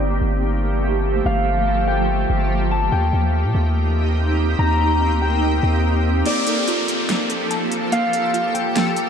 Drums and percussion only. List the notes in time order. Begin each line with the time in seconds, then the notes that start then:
6.26 closed hi-hat
6.47 closed hi-hat
6.68 closed hi-hat
6.88 closed hi-hat
7.09 snare, closed hi-hat
7.30 closed hi-hat
7.51 closed hi-hat
7.72 closed hi-hat
7.92 closed hi-hat
8.13 closed hi-hat
8.34 closed hi-hat
8.55 closed hi-hat
8.76 snare, closed hi-hat
8.96 closed hi-hat